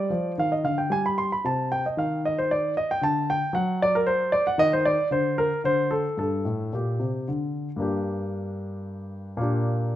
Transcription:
Already playing: D5
0.10 F3
0.38 D#3 F5
0.52 D#5
0.64 D3 F5
0.78 G5
0.90 G3 G#5
1.06 B5
1.18 C6
1.32 B5
1.44 C3 A5
1.72 G5
1.86 D#5
1.97 D#3 F5
2.25 D#5
2.38 C5
2.51 D5
2.77 D#5
2.91 G5
3.01 D3 A5
3.30 G5
3.53 F#3 F#5
3.82 D5
3.95 A#4
4.07 C5
4.32 D5
4.47 F#5
4.58 D#3 D#5
4.73 C5
4.85 D5
5.11 D3 C5
5.38 A#4
5.64 D3 C5
5.91 A4
6.17 G2 A4
6.45 A2
6.73 A#2 G4
6.99 C3
7.28 D3
7.76 G2 A#3 D4
7.82 G4
9.37 A#2 A#3 D4
9.42 G4

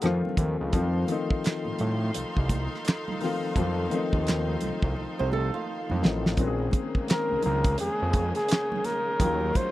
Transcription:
0.01 F2 D#3 F3 A3 C4, closed hi-hat, muted conga
0.05 F4, cross-stick
0.25 muted conga, high conga, low conga
0.37 D#2, kick, closed hi-hat, high conga
0.61 C#2
0.72 F2 D#3 F3 A3 C4 D#4 F4 A4 F5 C6, kick, closed hi-hat, low conga
0.94 muted conga
1.07 D#3 F3 A3 C4, closed hi-hat, high conga
1.12 D#4
1.30 kick
1.44 snare, clap, closed hi-hat, muted conga
1.65 A2, muted conga, high conga
1.79 A2, closed hi-hat, low conga
2.14 C2, closed hi-hat, muted conga
2.36 C2, kick, muted conga
2.49 kick, closed hi-hat, high conga
2.75 snare
2.84 closed hi-hat, muted conga
2.88 snare, clap
3.08 muted conga, high conga, low conga
3.20 D#3 F3 A3 C4 F4, snare, open hi-hat, high conga
3.55 F2 D#3 F3 A3 C4 F4, kick, closed hi-hat, muted conga, low conga
3.90 D#3 F3 A3 C4, closed hi-hat, high conga
3.95 D#4
4.13 D#2, kick
4.27 snare, clap, closed hi-hat, muted conga
4.47 high conga
4.61 C2, closed hi-hat, low conga
4.82 C2, kick
4.96 C2, muted conga
5.18 C2 C5, muted conga
5.32 A4, high conga
5.54 F4
5.67 muted conga
5.90 F2, muted conga, high conga, low conga
6.02 A1 D#3 F3 A3 C4 D#4, snare, high conga
6.26 snare
6.37 A#1 C#3 D#3 G#3 A#3 C4 C#4 F#4, kick, closed hi-hat, muted conga, low conga
6.47 G#4
6.58 muted conga
6.71 kick, closed hi-hat, high conga
6.95 kick
7.08 D#3 A#3 C4 C#4 A#4, snare, clap, closed hi-hat
7.29 C#2, high conga
7.42 C#2 A#4, closed hi-hat, low conga
7.64 kick, closed hi-hat
7.78 F2 G#4, closed hi-hat, muted conga
8.00 F2, muted conga
8.13 kick, closed hi-hat, high conga
8.35 G#4, snare, closed hi-hat
8.48 clap, closed hi-hat, muted conga
8.52 snare
8.72 high conga, low conga
8.84 A#4, snare, closed hi-hat, high conga
9.19 D#2 D#3 F3 F#3 C#4 D#4 F4 A#4, kick, closed hi-hat, muted conga, low conga
9.26 F#3
9.41 muted conga
9.54 C5, kick, closed hi-hat, high conga

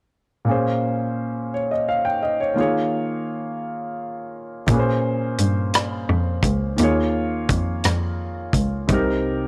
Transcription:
0.45 A#2 A#3 C#4
0.50 G#4 C5
1.54 C#5
1.71 D#5
1.89 F5
2.05 G5
2.23 D#5
2.40 C#5
2.54 D#3 A#3 F4
2.59 G#4 C#5
4.67 A#2 A#3 C#4, kick, closed hi-hat
4.71 G#4 B4
4.79 C5
5.38 G2, closed hi-hat
5.74 cross-stick, closed hi-hat
6.09 F2
6.43 C#2, kick, closed hi-hat
6.76 D#2 D#3 A#3 F4, closed hi-hat
6.82 G#4 C#5
7.49 F2, kick, closed hi-hat
7.84 F2, cross-stick, closed hi-hat
8.53 C#2, kick, closed hi-hat
8.88 C2 C3 C4 D#4, kick, closed hi-hat
8.92 G4 A#4

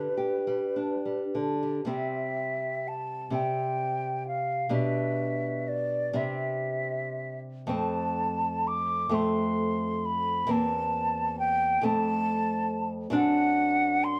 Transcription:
Already playing: G2 G3 B4
0.17 G4
0.47 G3
0.76 D4
1.05 G3
1.35 D3
1.63 G3
1.85 C3 G3 C4
1.90 E5
2.88 A5
3.30 C3 G3 C4
3.35 G5
4.27 F5
4.69 B2 G3 D4
4.74 E5
5.68 D5
6.13 C3 G3 C4 E5
7.67 F2 A3 C4 A5
8.67 D6
9.09 F2 A3 C4
9.14 C6
10.05 B5
10.47 E2 A#3 C4
10.51 A5
11.39 G5
11.81 F2 A3 C4 A5
13.10 F#2 C4 D4
13.15 F#5
14.04 C6

